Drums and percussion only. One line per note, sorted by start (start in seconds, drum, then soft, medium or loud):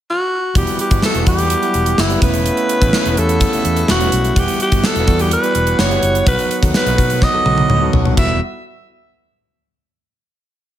0.55 kick loud
0.55 closed hi-hat medium
0.67 closed hi-hat medium
0.79 closed hi-hat medium
0.91 kick medium
0.91 closed hi-hat medium
1.02 snare loud
1.14 closed hi-hat soft
1.26 kick medium
1.26 closed hi-hat medium
1.38 closed hi-hat medium
1.50 closed hi-hat medium
1.63 closed hi-hat soft
1.74 closed hi-hat medium
1.86 closed hi-hat medium
1.98 snare loud
2.10 closed hi-hat soft
2.22 kick medium
2.22 closed hi-hat medium
2.34 closed hi-hat soft
2.46 closed hi-hat medium
2.57 closed hi-hat medium
2.69 closed hi-hat medium
2.82 kick medium
2.82 closed hi-hat medium
2.93 snare loud
3.05 closed hi-hat soft
3.17 closed hi-hat medium
3.29 closed hi-hat medium
3.41 kick medium
3.41 closed hi-hat medium
3.53 closed hi-hat soft
3.65 closed hi-hat medium
3.76 closed hi-hat medium
3.88 snare loud
4.00 closed hi-hat soft
4.12 closed hi-hat medium
4.24 closed hi-hat soft
4.36 kick loud
4.36 closed hi-hat medium
4.48 closed hi-hat medium
4.60 closed hi-hat medium
4.72 kick medium
4.72 closed hi-hat medium
4.84 snare loud
4.96 closed hi-hat soft
5.08 kick medium
5.08 closed hi-hat medium
5.19 closed hi-hat medium
5.31 closed hi-hat medium
5.43 closed hi-hat soft
5.55 closed hi-hat medium
5.67 closed hi-hat medium
5.79 snare loud
5.91 closed hi-hat soft
6.03 closed hi-hat medium
6.15 closed hi-hat soft
6.27 kick loud
6.27 closed hi-hat medium
6.39 closed hi-hat soft
6.51 closed hi-hat medium
6.63 kick medium
6.63 closed hi-hat medium
6.74 snare loud
6.86 closed hi-hat soft
6.98 kick medium
6.98 closed hi-hat medium
7.10 closed hi-hat medium
7.22 kick medium
7.22 snare medium
7.46 high tom medium
7.58 high tom medium
7.70 mid tom medium
7.93 floor tom medium
8.05 floor tom medium
8.17 kick medium
8.17 crash medium